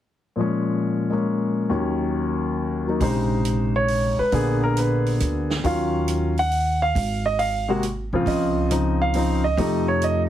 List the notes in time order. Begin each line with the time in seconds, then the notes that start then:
0.36 A#2 F3 G#3
0.41 C#4
1.10 G#3 A#3 C#4
1.69 D#2 D#3 F#3 C#4
2.87 F#3 A#3 D#4
3.00 A#1 C3 C#3 G#3 D#4 C5, kick, open hi-hat
3.45 closed hi-hat
3.76 C#5
3.88 open hi-hat
4.19 B4, muted upright bass stroke
4.32 A#1 D3 A#3 B3 G#4, kick, open hi-hat
4.64 A#4
4.77 B4, closed hi-hat
5.06 open hi-hat
5.20 D2, closed hi-hat
5.50 snare
5.64 D#2 D#3 F#3 C#4 F4 F5, kick, open hi-hat
6.08 closed hi-hat
6.37 F#5, open hi-hat
6.51 open hi-hat
6.82 F5
6.95 G#1, kick, open hi-hat
7.26 D#5
7.39 F5, open hi-hat
7.68 C3 G#3 A#3 F#4
7.83 closed hi-hat
8.13 G#2 C#3 F3 C4 F4
8.26 C#2 D#5, kick, open hi-hat
8.70 C#3 F3 C4 D#4, closed hi-hat
9.02 F5
9.14 C#3 F3 C4 D#4, open hi-hat
9.44 D#5
9.57 F2 C3 F3 A3 D#4, kick, open hi-hat
9.88 C#5
10.02 D#5, closed hi-hat